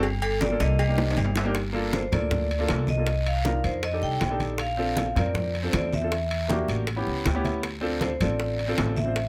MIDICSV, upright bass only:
0, 0, Header, 1, 2, 480
1, 0, Start_track
1, 0, Key_signature, -2, "minor"
1, 0, Tempo, 380711
1, 37, Time_signature, 4, 2, 24, 8
1, 11705, End_track
2, 0, Start_track
2, 0, Title_t, "Upright bass"
2, 0, Program_c, 0, 32
2, 0, Note_on_c, 0, 31, 92
2, 686, Note_off_c, 0, 31, 0
2, 759, Note_on_c, 0, 36, 93
2, 1425, Note_off_c, 0, 36, 0
2, 1479, Note_on_c, 0, 31, 85
2, 2601, Note_off_c, 0, 31, 0
2, 2680, Note_on_c, 0, 38, 92
2, 3346, Note_off_c, 0, 38, 0
2, 3396, Note_on_c, 0, 36, 82
2, 4522, Note_off_c, 0, 36, 0
2, 4592, Note_on_c, 0, 41, 83
2, 5040, Note_off_c, 0, 41, 0
2, 5074, Note_on_c, 0, 36, 62
2, 5298, Note_off_c, 0, 36, 0
2, 5316, Note_on_c, 0, 34, 79
2, 6443, Note_off_c, 0, 34, 0
2, 6508, Note_on_c, 0, 41, 92
2, 7183, Note_off_c, 0, 41, 0
2, 7230, Note_on_c, 0, 40, 87
2, 8360, Note_off_c, 0, 40, 0
2, 8428, Note_on_c, 0, 33, 84
2, 8879, Note_off_c, 0, 33, 0
2, 8914, Note_on_c, 0, 37, 70
2, 9140, Note_off_c, 0, 37, 0
2, 9149, Note_on_c, 0, 38, 81
2, 10278, Note_off_c, 0, 38, 0
2, 10362, Note_on_c, 0, 33, 86
2, 11028, Note_off_c, 0, 33, 0
2, 11073, Note_on_c, 0, 33, 82
2, 11705, Note_off_c, 0, 33, 0
2, 11705, End_track
0, 0, End_of_file